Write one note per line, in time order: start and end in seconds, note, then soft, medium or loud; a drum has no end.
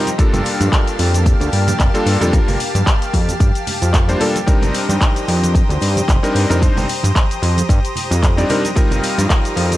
0.00 8.72 G4 medium
0.00 0.15 C5 medium
0.00 0.15 D#5 medium
0.00 0.15 A#5 medium
0.06 closed hi-hat soft
0.06 high conga medium
0.06 shaker soft
0.06 shaker medium
0.18 0.31 G1 soft
0.18 1.91 G3 medium
0.18 4.43 A#3 medium
0.18 1.91 A#3 medium
0.18 1.91 D4 medium
0.18 1.91 F4 medium
0.18 1.92 A4 loud
0.18 4.43 F5 medium
0.18 4.43 A5 medium
0.18 kick loud
0.18 closed hi-hat medium
0.18 shaker soft
0.18 shaker medium
0.33 0.42 G1 loud
0.33 closed hi-hat soft
0.33 low conga loud
0.33 shaker soft
0.45 open hi-hat loud
0.45 shaker medium
0.60 0.69 G2 loud
0.60 closed hi-hat soft
0.60 high conga medium
0.60 shaker soft
0.60 shaker medium
0.72 kick loud
0.72 clap loud
0.72 closed hi-hat medium
0.72 shaker soft
0.72 shaker medium
0.87 closed hi-hat soft
0.87 shaker soft
0.99 1.34 F2 medium
0.99 open hi-hat loud
0.99 high bongo medium
0.99 shaker medium
1.14 closed hi-hat soft
1.14 high conga medium
1.14 shaker soft
1.14 shaker medium
1.26 kick loud
1.26 closed hi-hat medium
1.26 shaker soft
1.26 shaker medium
1.40 1.49 D2 loud
1.40 closed hi-hat soft
1.40 high bongo medium
1.40 shaker soft
1.53 1.73 G2 medium
1.53 open hi-hat loud
1.53 shaker medium
1.67 closed hi-hat soft
1.67 high conga medium
1.67 low conga medium
1.67 shaker soft
1.67 shaker medium
1.79 1.90 F1 medium
1.79 kick loud
1.79 clap loud
1.79 closed hi-hat medium
1.79 shaker soft
1.79 shaker medium
1.94 2.18 G3 medium
1.94 2.18 A#3 medium
1.94 2.18 D4 medium
1.94 2.18 F4 medium
1.94 2.18 A4 loud
1.94 closed hi-hat soft
1.94 shaker soft
2.06 2.17 G2 medium
2.06 open hi-hat loud
2.06 shaker medium
2.21 2.40 F2 medium
2.21 2.31 G3 loud
2.21 2.31 A#3 medium
2.21 2.31 D4 medium
2.21 2.32 F4 medium
2.21 2.32 A4 loud
2.21 closed hi-hat soft
2.21 high bongo soft
2.21 low conga medium
2.21 shaker medium
2.21 shaker soft
2.33 2.56 G3 medium
2.33 2.56 A#3 medium
2.33 2.56 D4 medium
2.33 2.56 F4 medium
2.33 2.56 A#4 loud
2.33 kick loud
2.33 closed hi-hat medium
2.33 shaker soft
2.33 shaker medium
2.48 2.57 G1 loud
2.48 open hi-hat medium
2.48 low conga loud
2.48 shaker soft
2.60 open hi-hat loud
2.60 shaker medium
2.75 2.83 G2 loud
2.75 closed hi-hat soft
2.75 high conga medium
2.75 shaker medium
2.87 kick loud
2.87 clap loud
2.87 closed hi-hat medium
2.87 shaker soft
2.87 shaker medium
3.02 closed hi-hat soft
3.02 shaker soft
3.13 3.34 F2 medium
3.13 kick medium
3.13 open hi-hat loud
3.13 high bongo medium
3.13 shaker medium
3.29 closed hi-hat soft
3.29 high conga loud
3.29 shaker medium
3.29 shaker soft
3.40 3.51 G2 loud
3.40 kick loud
3.40 closed hi-hat medium
3.40 shaker soft
3.40 shaker medium
3.55 closed hi-hat soft
3.55 shaker soft
3.67 open hi-hat loud
3.67 low conga medium
3.67 shaker medium
3.82 4.16 F2 medium
3.82 closed hi-hat soft
3.82 high bongo medium
3.82 shaker soft
3.82 shaker medium
3.94 kick loud
3.94 clap loud
3.94 closed hi-hat medium
3.94 high conga medium
3.94 shaker medium
3.94 shaker soft
4.08 4.18 G3 medium
4.08 4.18 A#3 medium
4.08 4.18 D4 medium
4.08 4.18 F4 medium
4.08 4.18 C5 loud
4.08 closed hi-hat soft
4.08 high bongo medium
4.08 shaker soft
4.20 4.36 G3 loud
4.20 4.36 A#3 medium
4.20 4.36 D4 medium
4.20 4.36 F4 medium
4.20 4.36 A4 loud
4.20 open hi-hat loud
4.20 low conga medium
4.20 shaker loud
4.35 closed hi-hat soft
4.35 high conga medium
4.35 shaker soft
4.35 shaker medium
4.46 4.59 G1 soft
4.46 6.19 G3 medium
4.46 6.19 C4 medium
4.46 6.19 D4 medium
4.46 6.20 D#4 medium
4.46 6.20 A#4 loud
4.46 8.72 C5 medium
4.46 9.77 A#5 medium
4.46 9.77 D#6 medium
4.46 kick loud
4.46 closed hi-hat medium
4.46 shaker soft
4.46 shaker medium
4.62 4.71 G1 loud
4.62 closed hi-hat soft
4.62 low conga medium
4.62 shaker soft
4.74 open hi-hat loud
4.74 shaker loud
4.89 4.98 G2 medium
4.89 closed hi-hat soft
4.89 high conga medium
4.89 shaker soft
4.89 shaker medium
5.01 kick loud
5.01 clap loud
5.01 closed hi-hat medium
5.01 shaker soft
5.01 shaker medium
5.16 closed hi-hat soft
5.16 shaker soft
5.28 5.63 F2 medium
5.28 open hi-hat loud
5.28 high bongo medium
5.28 shaker medium
5.43 closed hi-hat soft
5.43 high conga medium
5.43 shaker medium
5.55 kick loud
5.55 closed hi-hat medium
5.55 shaker soft
5.55 shaker medium
5.69 5.78 D2 loud
5.69 closed hi-hat soft
5.69 high bongo medium
5.69 shaker soft
5.81 6.02 G2 medium
5.81 open hi-hat loud
5.81 shaker medium
5.96 closed hi-hat soft
5.96 high conga medium
5.96 low conga medium
5.96 shaker soft
5.96 shaker medium
6.08 6.19 F1 medium
6.08 kick loud
6.08 clap loud
6.08 closed hi-hat medium
6.08 shaker soft
6.08 shaker medium
6.23 6.46 G3 medium
6.23 6.46 C4 medium
6.23 6.46 D4 medium
6.23 6.47 D#4 medium
6.23 6.47 A#4 loud
6.23 closed hi-hat soft
6.23 shaker soft
6.35 6.46 G2 medium
6.35 open hi-hat loud
6.35 shaker loud
6.50 6.69 F2 medium
6.50 6.60 G3 medium
6.50 6.60 C4 medium
6.50 6.60 D4 medium
6.50 6.60 D#4 medium
6.50 6.60 A#4 loud
6.50 closed hi-hat soft
6.50 high bongo soft
6.50 low conga medium
6.50 shaker medium
6.62 6.85 G3 medium
6.62 6.85 C4 medium
6.62 6.85 D4 medium
6.62 6.85 D#4 medium
6.62 6.85 C5 loud
6.62 kick loud
6.62 closed hi-hat medium
6.62 shaker soft
6.62 shaker medium
6.77 6.85 G1 loud
6.77 open hi-hat medium
6.77 low conga loud
6.77 shaker soft
6.88 open hi-hat loud
6.88 shaker loud
7.03 7.12 G2 loud
7.03 closed hi-hat soft
7.03 high conga medium
7.03 shaker medium
7.16 kick loud
7.16 clap loud
7.16 closed hi-hat medium
7.16 shaker soft
7.16 shaker medium
7.31 closed hi-hat soft
7.31 shaker soft
7.42 7.62 F2 medium
7.42 open hi-hat loud
7.42 high bongo medium
7.42 shaker medium
7.57 closed hi-hat soft
7.57 high conga medium
7.57 shaker medium
7.59 shaker medium
7.69 7.80 G2 medium
7.69 kick loud
7.69 closed hi-hat medium
7.69 shaker soft
7.71 shaker medium
7.85 closed hi-hat soft
7.85 shaker soft
7.96 open hi-hat loud
7.96 low conga medium
7.96 shaker medium
8.10 8.44 F2 loud
8.10 closed hi-hat soft
8.10 high bongo medium
8.10 shaker soft
8.10 shaker medium
8.23 kick loud
8.23 clap loud
8.23 closed hi-hat medium
8.23 high conga medium
8.23 shaker soft
8.23 shaker medium
8.37 8.46 G3 medium
8.37 8.47 C4 medium
8.37 8.47 D4 medium
8.37 8.47 D#4 medium
8.37 8.47 D5 loud
8.37 closed hi-hat soft
8.37 high bongo medium
8.37 shaker soft
8.49 8.65 G3 loud
8.49 8.65 C4 medium
8.49 8.65 D4 medium
8.49 8.65 D#4 medium
8.49 8.65 A#4 loud
8.49 open hi-hat loud
8.49 low conga medium
8.49 shaker medium
8.64 closed hi-hat soft
8.64 high conga medium
8.64 shaker medium
8.75 8.88 G1 soft
8.75 9.77 G3 medium
8.75 9.77 C4 medium
8.75 9.77 D#4 medium
8.75 9.77 F4 medium
8.75 9.77 G4 medium
8.75 9.77 A#4 loud
8.75 9.77 F5 medium
8.75 kick loud
8.75 closed hi-hat medium
8.75 shaker soft
8.75 shaker medium
8.91 9.00 G1 loud
8.91 closed hi-hat soft
8.91 low conga medium
8.91 shaker soft
9.03 open hi-hat loud
9.03 shaker loud
9.18 9.27 G2 loud
9.18 closed hi-hat soft
9.18 high conga medium
9.18 shaker medium
9.29 kick loud
9.29 clap loud
9.29 closed hi-hat medium
9.29 shaker soft
9.31 shaker medium
9.45 closed hi-hat soft
9.45 shaker soft
9.56 9.77 F2 medium
9.56 open hi-hat loud
9.56 high bongo medium
9.56 shaker loud
9.72 closed hi-hat soft
9.72 high conga medium
9.72 shaker medium